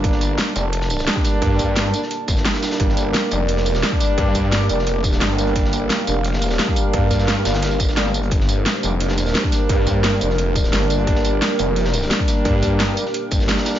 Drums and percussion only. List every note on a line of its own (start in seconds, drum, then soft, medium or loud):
0.04 kick loud
0.04 closed hi-hat medium
0.12 snare soft
0.21 closed hi-hat medium
0.21 tambourine medium
0.38 snare loud
0.38 closed hi-hat medium
0.56 closed hi-hat medium
0.56 tambourine medium
0.73 closed hi-hat medium
0.81 snare medium
0.89 closed hi-hat medium
0.89 open hi-hat medium
0.89 tambourine medium
0.99 snare soft
0.99 tambourine soft
1.07 snare loud
1.07 closed hi-hat loud
1.16 kick loud
1.24 snare soft
1.24 closed hi-hat medium
1.24 tambourine medium
1.42 kick loud
1.42 closed hi-hat medium
1.59 kick medium
1.59 closed hi-hat medium
1.59 tambourine medium
1.76 snare loud
1.76 closed hi-hat medium
1.94 closed hi-hat medium
1.94 tambourine medium
2.02 snare soft
2.11 closed hi-hat medium
2.28 kick loud
2.28 closed hi-hat medium
2.28 tambourine medium
2.37 snare soft
2.37 tambourine soft
2.45 snare loud
2.45 closed hi-hat medium
2.54 snare medium
2.54 snare soft
2.54 closed hi-hat medium
2.62 snare loud
2.62 closed hi-hat medium
2.62 tambourine medium
2.71 snare loud
2.71 closed hi-hat medium
2.80 kick loud
2.80 closed hi-hat medium
2.89 snare soft
2.97 closed hi-hat medium
2.97 tambourine medium
3.14 snare loud
3.14 closed hi-hat medium
3.31 closed hi-hat medium
3.31 tambourine medium
3.48 closed hi-hat medium
3.57 snare medium
3.66 closed hi-hat medium
3.66 open hi-hat medium
3.66 tambourine medium
3.75 snare medium
3.75 tambourine soft
3.83 snare loud
3.83 closed hi-hat medium
3.92 kick loud
4.00 snare soft
4.00 closed hi-hat medium
4.00 tambourine medium
4.18 kick loud
4.18 closed hi-hat medium
4.34 kick medium
4.34 closed hi-hat medium
4.34 tambourine medium
4.52 snare loud
4.52 closed hi-hat loud
4.52 closed hi-hat medium
4.69 closed hi-hat medium
4.69 tambourine medium
4.79 snare soft
4.87 closed hi-hat medium
5.04 kick loud
5.04 closed hi-hat medium
5.04 tambourine medium
5.12 snare medium
5.12 tambourine soft
5.21 snare loud
5.21 closed hi-hat medium
5.38 closed hi-hat medium
5.38 tambourine medium
5.47 closed hi-hat soft
5.56 kick loud
5.56 closed hi-hat medium
5.65 snare soft
5.73 closed hi-hat medium
5.73 tambourine medium
5.90 snare loud
5.90 closed hi-hat medium
5.90 closed hi-hat loud
6.07 closed hi-hat medium
6.07 tambourine medium
6.24 closed hi-hat medium
6.33 snare medium
6.42 closed hi-hat medium
6.42 open hi-hat medium
6.42 tambourine medium
6.50 snare medium
6.50 tambourine soft
6.59 snare loud
6.59 closed hi-hat medium
6.59 closed hi-hat loud
6.68 kick loud
6.76 closed hi-hat medium
6.76 tambourine medium
6.93 kick loud
6.93 closed hi-hat loud
6.93 closed hi-hat medium
7.11 kick medium
7.11 closed hi-hat medium
7.11 tambourine medium
7.19 snare soft
7.19 tambourine soft
7.28 snare loud
7.28 closed hi-hat medium
7.45 snare loud
7.45 closed hi-hat medium
7.45 tambourine medium
7.54 snare loud
7.54 closed hi-hat medium
7.62 snare loud
7.62 closed hi-hat medium
7.71 tambourine soft
7.80 kick loud
7.80 closed hi-hat medium
7.80 tambourine medium
7.88 snare soft
7.88 tambourine soft
7.96 snare loud
7.96 closed hi-hat medium
8.06 snare soft
8.14 closed hi-hat medium
8.14 tambourine medium
8.23 closed hi-hat soft
8.31 kick loud
8.31 closed hi-hat medium
8.31 closed hi-hat loud
8.40 snare soft
8.49 closed hi-hat medium
8.49 tambourine medium
8.66 snare loud
8.66 closed hi-hat loud
8.66 closed hi-hat medium
8.83 closed hi-hat medium
8.83 tambourine medium
9.00 closed hi-hat medium
9.08 snare medium
9.18 closed hi-hat medium
9.18 open hi-hat medium
9.18 tambourine medium
9.26 snare medium
9.26 tambourine soft
9.35 snare loud
9.35 closed hi-hat medium
9.44 kick loud
9.52 snare soft
9.52 closed hi-hat medium
9.52 tambourine medium
9.69 kick loud
9.69 closed hi-hat loud
9.69 closed hi-hat medium
9.86 kick medium
9.86 closed hi-hat medium
9.86 tambourine medium
10.03 snare loud
10.03 closed hi-hat medium
10.03 closed hi-hat loud
10.21 closed hi-hat medium
10.21 tambourine medium
10.30 snare soft
10.38 closed hi-hat loud
10.38 closed hi-hat medium
10.56 kick loud
10.56 closed hi-hat medium
10.56 tambourine medium
10.64 snare soft
10.64 tambourine soft
10.73 snare loud
10.73 closed hi-hat loud
10.73 closed hi-hat medium
10.90 closed hi-hat medium
10.90 tambourine medium
10.98 closed hi-hat soft
11.07 kick loud
11.07 closed hi-hat medium
11.15 snare soft
11.25 closed hi-hat medium
11.25 tambourine medium
11.42 snare loud
11.42 closed hi-hat medium
11.59 closed hi-hat medium
11.59 tambourine medium
11.76 closed hi-hat medium
11.85 snare medium
11.94 closed hi-hat medium
11.94 open hi-hat medium
11.94 tambourine medium
12.02 snare soft
12.02 tambourine soft
12.10 snare loud
12.10 closed hi-hat loud
12.10 closed hi-hat medium
12.19 kick loud
12.28 snare soft
12.28 closed hi-hat medium
12.28 tambourine medium
12.45 kick loud
12.45 closed hi-hat medium
12.45 closed hi-hat loud
12.63 kick medium
12.63 closed hi-hat medium
12.63 tambourine medium
12.80 snare loud
12.80 closed hi-hat medium
12.97 closed hi-hat medium
12.97 tambourine medium
13.06 snare soft
13.14 closed hi-hat medium
13.14 closed hi-hat loud
13.31 kick loud
13.31 closed hi-hat medium
13.31 tambourine medium
13.40 snare soft
13.40 tambourine soft
13.48 snare loud
13.48 closed hi-hat medium
13.57 snare soft
13.57 snare loud
13.57 closed hi-hat medium
13.65 snare loud
13.65 closed hi-hat medium
13.65 tambourine medium
13.75 snare loud
13.75 closed hi-hat medium